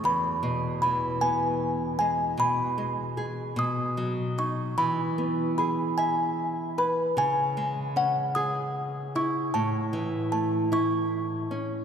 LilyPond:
<<
  \new Staff \with { instrumentName = "Music box" } { \time 6/8 \key e \major \tempo 4. = 51 b''4 b''8 gis''4 gis''8 | b''4. dis'''4 cis'''8 | b''4 b''8 gis''4 b''8 | gis''4 fis''8 dis'''4 cis'''8 |
a''4 a''8 cis'''4. | }
  \new Staff \with { instrumentName = "Nylon-string guitar" } { \clef bass \time 6/8 \key e \major e,8 b,8 e8 b4 gis8 | b,8 gis8 gis'8 b,8 fis8 dis'8 | e8 b8 gis'8 e''4 b'8 | cis8 gis8 cis'8 gis'4 e'8 |
a,8 e8 a8 e'4 cis'8 | }
>>